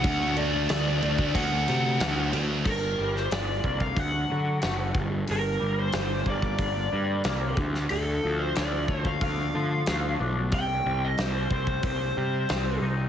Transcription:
<<
  \new Staff \with { instrumentName = "Lead electric guitar" } { \time 4/4 \key g \minor \tempo 4 = 92 fis''8 d''4. fis''4. r8 | bes'8. c''16 d''8. f''16 fis''4. r8 | bes'8. c''8. d''2 r8 | a'8. c''16 d''8. f''16 f''4. r8 |
g''8. ees''16 c''8 c''8 c''4. r8 | }
  \new Staff \with { instrumentName = "Distorted electric guitar" } { \time 4/4 \key g \minor <d a d' fis'>8 <d a d' fis'>16 <a d' fis'>16 <d a d' fis'>16 <a d' fis'>16 <d a d' fis'>16 <a d' fis'>8 <a d' fis'>16 <d a d' fis'>16 <a d' fis'>16 <d a d' fis'>8 <d a d' fis'>8 | r1 | r1 | r1 |
r1 | }
  \new Staff \with { instrumentName = "Clean electric guitar" } { \clef bass \time 4/4 \key g \minor r1 | g,8 g8 d8 bes8 d8 fis8 a8 g,8 | g,8 g8 d8 bes8 d8 g8 bes8 d8 | d8 f8 d8 a8 d8 f8 a8 d'8 |
c8 g8 c8 c'8 c8 g8 c'8 ees'8 | }
  \new Staff \with { instrumentName = "Picked electric bass" } { \clef bass \time 4/4 \key g \minor d,4 d,8 d,8 d,8 c8 d,8 d,8 | g,,8 g,,8 g,,8 c,8 d,8 d8 fis,,8 g,,8 | g,,8 g,,8 g,,8 g,,8 g,,8 g,8 c,8 d,8 | d,8 d,8 d,8 d,8 d,8 d8 d,8 b,,8 |
c,8 c,8 c,8 c,8 c,8 c8 c,8 c,8 | }
  \new DrumStaff \with { instrumentName = "Drums" } \drummode { \time 4/4 <cymc bd>8 cymc8 <cymc sn>8 cymc16 bd16 <cymc bd>8 cymc8 <cymc sn>8 cymc8 | <cymc bd>8. sn16 <hho sn>8 bd16 bd16 <hho bd>4 <hho sn>8 bd8 | hho4 <hho sn>8 bd16 bd16 <hho bd>4 <hho sn>8 bd16 sn16 | hho4 <hho sn>8 bd16 bd16 <hho bd>4 <hho sn>4 |
<hho bd>4 <hho sn>8 bd16 bd16 <hho bd>4 <hho sn>4 | }
>>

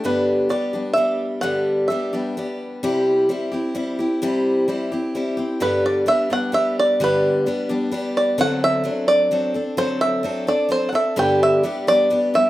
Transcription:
<<
  \new Staff \with { instrumentName = "Five-string banjo" } { \time 3/4 \key g \major \tempo 4 = 130 b'4 d''4 e''4 | fis''4 e''4. r8 | r2. | r2. |
b'8 d''8 e''8 fis''8 e''8 d''8 | b'2 r8 d''8 | fis''8 e''4 d''4. | c''8 e''4 d''8 c''16. fis''32 e''8 |
g''8 e''4 d''4 e''8 | }
  \new Staff \with { instrumentName = "Steel-string acoustic guitar" } { \time 3/4 \key g \major <g, d g b d' g'>4 <g b d' g'>8 <g b d' g'>8 <g b d' g'>4 | <g, d g b d' g'>4 <g b d' g'>8 <g b d' g'>8 <g b d' g'>4 | <c g c' e' g'>4 <g c' e' g'>8 <c' e' g'>8 <g c' e' g'>8 <c' e' g'>8 | <c g c' e' g'>4 <g c' e' g'>8 <c' e' g'>8 <g c' e' g'>8 <c' e' g'>8 |
<g, d g b d' g'>4 <g b d' g'>8 <g b d' g'>8 <g b d' g'>4 | <g, d g b d' g'>4 <g b d' g'>8 <g b d' g'>8 <g b d' g'>4 | <d fis c' d' a'>4 <fis c' d' a'>4 <fis c' d' a'>8 <c' d' a'>8 | <d fis c' d' a'>4 <fis c' d' a'>8 <c' d' a'>8 <fis c' d' a'>8 <c' d' a'>8 |
<g, d g b d' g'>4 <g b d' g'>8 <g b d' g'>8 <g b d' g'>8 <g b d' g'>8 | }
>>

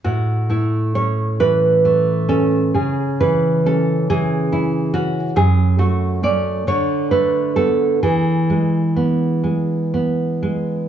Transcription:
\new Staff \with { instrumentName = "Nylon-string guitar" } { \time 6/8 \key a \major \tempo 4. = 44 << { fis'8 e'8 cis''8 b'4 a'8 | gis'8 b'8 a'8 gis'4 fis'8 | gis'8 fis'8 d''8 cis''8 b'8 a'8 | gis'4. r4. | } \\ { a,8 a8 cis'8 e8 a8 cis'8 | cis8 e8 cis'8 e8 e'8 cis'8 | fis,8 a8 <a cis'>8 d8 a8 <a b>8 | e8 gis8 b8 gis8 b8 gis8 | } >> }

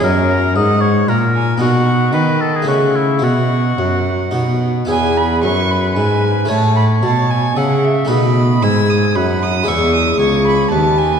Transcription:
<<
  \new Staff \with { instrumentName = "Violin" } { \time 3/4 \key e \major \tempo 4 = 113 cis''8 ais''8 fis''4 ais''8 gis''8 | fis''4 dis''4 e''4 | fis''2~ fis''8 r8 | gis''8 b''8 cis'''8 b''8 gis''4 |
a''8 b''8 a''8 gis''8 fis''8 e''8 | b''4 e'''8 dis'''8 b''8 dis'''8 | cis'''8 dis'''8 cis'''8 b''8 a''8 gis''8 | }
  \new Staff \with { instrumentName = "Oboe" } { \time 3/4 \key e \major ais'4 dis''8 cis''8 ais'4 | fis'4 b'8 a'16 gis'16 fis'8 e'8 | fis'2 r4 | b'2. |
cis''2 e''4 | dis''4 gis''4 fis''4 | e''4 cis''4 b'4 | }
  \new Staff \with { instrumentName = "Harpsichord" } { \time 3/4 \key e \major <cis' e'>2. | <b dis'>2 <a e'>4 | e'2 <dis' fis'>4 | <b e' gis'>2. |
<a e' cis''>2. | <a dis' b'>2. | <gis e' b'>2. | }
  \new Staff \with { instrumentName = "Harpsichord" } { \clef bass \time 3/4 \key e \major fis,4 gis,4 ais,4 | b,4 dis4 cis4 | b,4 fis,4 b,4 | e,4 fis,4 gis,4 |
a,4 b,4 cis4 | b,4 gis,4 fis,4 | e,4 cis,4 dis,4 | }
  \new Staff \with { instrumentName = "Cello" } { \clef bass \time 3/4 \key e \major fis,4 gis,4 ais,4 | b,4 dis4 cis4 | b,4 fis,4 b,4 | e,4 fis,4 gis,4 |
a,4 b,4 cis4 | b,4 gis,4 fis,4 | e,4 cis,4 dis,4 | }
>>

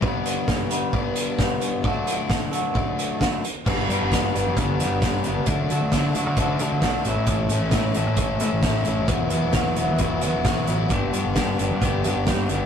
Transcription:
<<
  \new Staff \with { instrumentName = "Clean electric guitar" } { \time 4/4 \key g \lydian \tempo 4 = 132 <g b d' b'>4. <g b d' b'>4. <g b d' b'>4 | <d d' fis' a'>4. <d d' fis' a'>4. <d d' fis' a'>8 r8 | <g b d' b'>8 <g b d' b'>8 <g b d' b'>8 <g b d' b'>8 <g b d' b'>8 <g b d' b'>8 <g b d' b'>8 <g b d' b'>8 | <d d' fis' a'>8 <d d' fis' a'>8 <d d' fis' a'>8 <d d' fis' a'>8 <d d' fis' a'>8 <d d' fis' a'>8 <d d' fis' a'>8 <a, a cis' e' a'>8 |
<a, a cis' e' a'>8 <a, a cis' e' a'>8 <a, a cis' e' a'>8 <a, a cis' e' a'>8 <a, a cis' e' a'>8 <a, a cis' e' a'>8 <a, a cis' e' a'>8 <a, a cis' e' a'>8 | <e, e fis b e' fis'>8 <e, e fis b e' fis'>8 <e, e fis b e' fis'>8 <e, e fis b e' fis'>8 <e, e fis b e' fis'>8 <e, e fis b e' fis'>8 <e, e fis b e' fis'>8 <e, e fis b e' fis'>8 | <g, d g b d' g'>8 <g, d g b d' g'>8 <g, d g b d' g'>8 <g, d g b d' g'>8 <g, d g b d' g'>8 <g, d g b d' g'>8 <g, d g b d' g'>8 <g, d g b d' g'>8 | }
  \new Staff \with { instrumentName = "Overdriven electric guitar" } { \clef bass \time 4/4 \key g \lydian <g, d g b d'>2 <g, d g b d'>2 | <d fis a d'>2 <d fis a d'>4. r8 | <g, d g b d'>8 <g, d g b d'>8 <g, d g b d'>8 <g, d g b d'>8 <g, d g b d'>8 <g, d g b d'>8 <g, d g b d'>8 <g, d g b d'>8 | <d fis a d'>8 <d fis a d'>8 <d fis a d'>8 <d fis a d'>8 <d fis a d'>8 <d fis a d'>8 <d fis a d'>8 <a, e a cis' e'>8 |
<a, e a cis' e'>8 <a, e a cis' e'>8 <a, e a cis' e'>8 <a, e a cis' e'>8 <a, e a cis' e'>8 <a, e a cis' e'>8 <a, e a cis' e'>8 <a, e a cis' e'>8 | <e fis b e'>8 <e fis b e'>8 <e fis b e'>8 <e fis b e'>8 <e fis b e'>8 <e fis b e'>8 <e fis b e'>8 <e fis b e'>8 | <g, d g b d'>8 <g, d g b d'>8 <g, d g b d'>8 <g, d g b d'>8 <g, d g b d'>8 <g, d g b d'>8 <g, d g b d'>8 <g, d g b d'>8 | }
  \new Staff \with { instrumentName = "Picked electric bass" } { \clef bass \time 4/4 \key g \lydian r1 | r1 | g,,8 g,16 g,,16 g,8 g,,16 g,16 g,,8 g,16 g,,16 g,8 g,,16 cis,16 | d,8 d16 d,16 d8 d,16 d16 d,8 d16 d,16 b,,8 a,,16 a,16 |
a,,8 a,16 a,,16 a,8 a,,16 a,16 a,,8 a,16 a,,16 a,8 a,,16 f,,16 | e,,8 e,16 e,,16 e,8 e,,16 e,16 e,,8 e,16 e,,16 b,,8 a,,8 | g,,8 g,16 g,,16 g,8 g,,16 g,16 g,,8 g,16 g,,16 g,8 g,,16 cis,16 | }
  \new DrumStaff \with { instrumentName = "Drums" } \drummode { \time 4/4 bd8 hh8 <bd sn>8 hh8 bd8 hh8 <bd sn>8 hh8 | bd8 hh8 <bd sn>8 hh8 bd8 hh8 <bd sn>8 hh8 | <cymc bd>8 hh8 <hh bd sn>8 hh8 <hh bd>8 hh8 <hh bd sn>8 hh8 | <hh bd>8 hh8 <hh bd sn>8 hh8 <hh bd>8 hh8 <hh bd sn>8 hh8 |
<hh bd>8 hh8 <hh bd sn>8 hh8 <hh bd>8 hh8 <hh bd sn>8 hh8 | <hh bd>8 hh8 <hh bd sn>8 hh8 <hh bd>8 hh8 <hh bd sn>8 hh8 | <hh bd>8 hh8 <hh bd sn>8 hh8 <hh bd>8 hh8 <hh bd sn>8 hh8 | }
>>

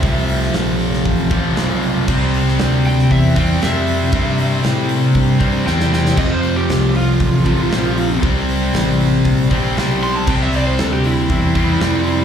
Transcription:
<<
  \new Staff \with { instrumentName = "Electric slide guitar" } { \time 4/4 \key c \mixolydian \tempo 4 = 117 e''4 r2. | r4. g''8 e''8 g''8 e''4~ | e''4 r2 g''8 g''8 | ees''16 c''8 g'8. f'2~ f'8 |
r2. r8 c'''16 a''16 | g''16 e''16 d''16 c''16 a'16 g'16 e'8 e'2 | }
  \new Staff \with { instrumentName = "Distorted electric guitar" } { \clef bass \time 4/4 \key c \mixolydian <f, c f>2~ <f, c f>8 <f, c f>8 <f, c f>4 | <c g c'>2~ <c g c'>8 <c g c'>8 <c g c'>4 | <c g c'>2~ <c g c'>8 <c g c'>8 <c g c'>4 | <f, c f>2~ <f, c f>8 <f, c f>8 <f, c f>4 |
<c g c'>2~ <c g c'>8 <c g c'>8 <c g c'>4 | <c g c'>2~ <c g c'>8 <c g c'>8 <c g c'>4 | }
  \new Staff \with { instrumentName = "Fingered electric bass" } { \clef bass \time 4/4 \key c \mixolydian c,4 bes,,4 a,,4 b,,4 | c,4 d,4 e,4 f,4 | g,4 a,4 g,4 e,4 | f,4 c,4 a,,4 bes,,4 |
c,4 a,,4 bes,,4 b,,4 | c,4 d,4 e,4 f,4 | }
  \new DrumStaff \with { instrumentName = "Drums" } \drummode { \time 4/4 <hho bd>8 hho16 sn16 <hho sn>8 hho16 sn16 <hho bd>8 <hho bd>8 <hho sn>8 hho8 | <cymc bd>8 hho16 sn16 <hho sn>8 hho16 sn16 <hho bd>8 <hho bd>8 <hho sn>8 hho8 | <hho bd>8 hho8 <hho sn>8 hho8 <hho bd>8 <hho bd>8 sn16 sn16 sn16 sn16 | <cymc bd>8 hho8 <hho sn>8 hho8 <hho bd>8 <hho bd>8 <hho sn>8 hho8 |
<hho bd>8 hho8 <hho sn>8 hho8 <hho bd>8 <hho bd>8 <hho sn>8 hho8 | <cymc bd>8 hho8 <hho sn>8 hho8 <hho bd>8 <hho bd>8 <hho sn>8 hho8 | }
>>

